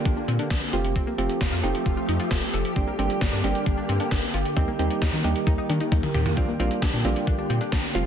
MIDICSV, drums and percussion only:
0, 0, Header, 1, 2, 480
1, 0, Start_track
1, 0, Tempo, 451128
1, 1018, Time_signature, 4, 2, 24, 8
1, 8580, End_track
2, 0, Start_track
2, 0, Title_t, "Drums"
2, 58, Note_on_c, 9, 36, 102
2, 58, Note_on_c, 9, 42, 76
2, 164, Note_off_c, 9, 36, 0
2, 164, Note_off_c, 9, 42, 0
2, 300, Note_on_c, 9, 42, 78
2, 406, Note_off_c, 9, 42, 0
2, 416, Note_on_c, 9, 42, 50
2, 523, Note_off_c, 9, 42, 0
2, 537, Note_on_c, 9, 38, 110
2, 538, Note_on_c, 9, 36, 106
2, 538, Note_on_c, 9, 42, 83
2, 643, Note_off_c, 9, 38, 0
2, 644, Note_off_c, 9, 36, 0
2, 645, Note_off_c, 9, 42, 0
2, 778, Note_on_c, 9, 42, 70
2, 884, Note_off_c, 9, 42, 0
2, 899, Note_on_c, 9, 42, 51
2, 1005, Note_off_c, 9, 42, 0
2, 1018, Note_on_c, 9, 36, 113
2, 1019, Note_on_c, 9, 42, 71
2, 1125, Note_off_c, 9, 36, 0
2, 1125, Note_off_c, 9, 42, 0
2, 1260, Note_on_c, 9, 42, 75
2, 1367, Note_off_c, 9, 42, 0
2, 1378, Note_on_c, 9, 42, 60
2, 1484, Note_off_c, 9, 42, 0
2, 1499, Note_on_c, 9, 38, 110
2, 1500, Note_on_c, 9, 36, 107
2, 1501, Note_on_c, 9, 42, 65
2, 1605, Note_off_c, 9, 38, 0
2, 1606, Note_off_c, 9, 36, 0
2, 1607, Note_off_c, 9, 42, 0
2, 1741, Note_on_c, 9, 42, 64
2, 1848, Note_off_c, 9, 42, 0
2, 1860, Note_on_c, 9, 42, 51
2, 1966, Note_off_c, 9, 42, 0
2, 1978, Note_on_c, 9, 36, 106
2, 1978, Note_on_c, 9, 42, 76
2, 2085, Note_off_c, 9, 36, 0
2, 2085, Note_off_c, 9, 42, 0
2, 2220, Note_on_c, 9, 42, 77
2, 2326, Note_off_c, 9, 42, 0
2, 2336, Note_on_c, 9, 42, 52
2, 2443, Note_off_c, 9, 42, 0
2, 2457, Note_on_c, 9, 38, 112
2, 2458, Note_on_c, 9, 36, 103
2, 2458, Note_on_c, 9, 42, 80
2, 2563, Note_off_c, 9, 38, 0
2, 2564, Note_off_c, 9, 36, 0
2, 2565, Note_off_c, 9, 42, 0
2, 2698, Note_on_c, 9, 42, 72
2, 2804, Note_off_c, 9, 42, 0
2, 2819, Note_on_c, 9, 42, 51
2, 2926, Note_off_c, 9, 42, 0
2, 2938, Note_on_c, 9, 36, 119
2, 2938, Note_on_c, 9, 42, 76
2, 3045, Note_off_c, 9, 36, 0
2, 3045, Note_off_c, 9, 42, 0
2, 3181, Note_on_c, 9, 42, 77
2, 3287, Note_off_c, 9, 42, 0
2, 3298, Note_on_c, 9, 42, 63
2, 3405, Note_off_c, 9, 42, 0
2, 3419, Note_on_c, 9, 38, 113
2, 3420, Note_on_c, 9, 36, 108
2, 3421, Note_on_c, 9, 42, 65
2, 3525, Note_off_c, 9, 38, 0
2, 3526, Note_off_c, 9, 36, 0
2, 3527, Note_off_c, 9, 42, 0
2, 3661, Note_on_c, 9, 42, 63
2, 3768, Note_off_c, 9, 42, 0
2, 3779, Note_on_c, 9, 42, 52
2, 3886, Note_off_c, 9, 42, 0
2, 3897, Note_on_c, 9, 42, 77
2, 3898, Note_on_c, 9, 36, 105
2, 4004, Note_off_c, 9, 36, 0
2, 4004, Note_off_c, 9, 42, 0
2, 4139, Note_on_c, 9, 42, 78
2, 4246, Note_off_c, 9, 42, 0
2, 4256, Note_on_c, 9, 42, 52
2, 4362, Note_off_c, 9, 42, 0
2, 4376, Note_on_c, 9, 38, 117
2, 4378, Note_on_c, 9, 36, 106
2, 4378, Note_on_c, 9, 42, 80
2, 4483, Note_off_c, 9, 38, 0
2, 4484, Note_off_c, 9, 36, 0
2, 4484, Note_off_c, 9, 42, 0
2, 4617, Note_on_c, 9, 42, 73
2, 4724, Note_off_c, 9, 42, 0
2, 4739, Note_on_c, 9, 42, 49
2, 4845, Note_off_c, 9, 42, 0
2, 4858, Note_on_c, 9, 36, 117
2, 4858, Note_on_c, 9, 42, 74
2, 4964, Note_off_c, 9, 42, 0
2, 4965, Note_off_c, 9, 36, 0
2, 5100, Note_on_c, 9, 42, 78
2, 5207, Note_off_c, 9, 42, 0
2, 5218, Note_on_c, 9, 42, 59
2, 5325, Note_off_c, 9, 42, 0
2, 5339, Note_on_c, 9, 38, 109
2, 5340, Note_on_c, 9, 36, 107
2, 5341, Note_on_c, 9, 42, 66
2, 5445, Note_off_c, 9, 38, 0
2, 5446, Note_off_c, 9, 36, 0
2, 5447, Note_off_c, 9, 42, 0
2, 5581, Note_on_c, 9, 42, 65
2, 5688, Note_off_c, 9, 42, 0
2, 5699, Note_on_c, 9, 42, 51
2, 5806, Note_off_c, 9, 42, 0
2, 5818, Note_on_c, 9, 36, 102
2, 5818, Note_on_c, 9, 42, 78
2, 5925, Note_off_c, 9, 36, 0
2, 5925, Note_off_c, 9, 42, 0
2, 6060, Note_on_c, 9, 42, 79
2, 6166, Note_off_c, 9, 42, 0
2, 6176, Note_on_c, 9, 42, 52
2, 6282, Note_off_c, 9, 42, 0
2, 6298, Note_on_c, 9, 36, 108
2, 6298, Note_on_c, 9, 42, 83
2, 6298, Note_on_c, 9, 48, 54
2, 6404, Note_off_c, 9, 36, 0
2, 6404, Note_off_c, 9, 42, 0
2, 6405, Note_off_c, 9, 48, 0
2, 6418, Note_on_c, 9, 47, 60
2, 6525, Note_off_c, 9, 47, 0
2, 6538, Note_on_c, 9, 42, 69
2, 6538, Note_on_c, 9, 45, 83
2, 6644, Note_off_c, 9, 42, 0
2, 6645, Note_off_c, 9, 45, 0
2, 6659, Note_on_c, 9, 42, 49
2, 6659, Note_on_c, 9, 43, 89
2, 6765, Note_off_c, 9, 42, 0
2, 6765, Note_off_c, 9, 43, 0
2, 6779, Note_on_c, 9, 36, 120
2, 6779, Note_on_c, 9, 42, 74
2, 6885, Note_off_c, 9, 36, 0
2, 6885, Note_off_c, 9, 42, 0
2, 7020, Note_on_c, 9, 42, 76
2, 7126, Note_off_c, 9, 42, 0
2, 7138, Note_on_c, 9, 42, 60
2, 7245, Note_off_c, 9, 42, 0
2, 7259, Note_on_c, 9, 38, 111
2, 7260, Note_on_c, 9, 36, 110
2, 7261, Note_on_c, 9, 42, 66
2, 7365, Note_off_c, 9, 38, 0
2, 7366, Note_off_c, 9, 36, 0
2, 7368, Note_off_c, 9, 42, 0
2, 7502, Note_on_c, 9, 42, 66
2, 7608, Note_off_c, 9, 42, 0
2, 7620, Note_on_c, 9, 42, 52
2, 7726, Note_off_c, 9, 42, 0
2, 7738, Note_on_c, 9, 36, 108
2, 7738, Note_on_c, 9, 42, 78
2, 7845, Note_off_c, 9, 36, 0
2, 7845, Note_off_c, 9, 42, 0
2, 7980, Note_on_c, 9, 42, 78
2, 8087, Note_off_c, 9, 42, 0
2, 8096, Note_on_c, 9, 42, 50
2, 8203, Note_off_c, 9, 42, 0
2, 8216, Note_on_c, 9, 38, 115
2, 8217, Note_on_c, 9, 36, 106
2, 8218, Note_on_c, 9, 42, 83
2, 8323, Note_off_c, 9, 38, 0
2, 8324, Note_off_c, 9, 36, 0
2, 8324, Note_off_c, 9, 42, 0
2, 8458, Note_on_c, 9, 42, 74
2, 8564, Note_off_c, 9, 42, 0
2, 8580, End_track
0, 0, End_of_file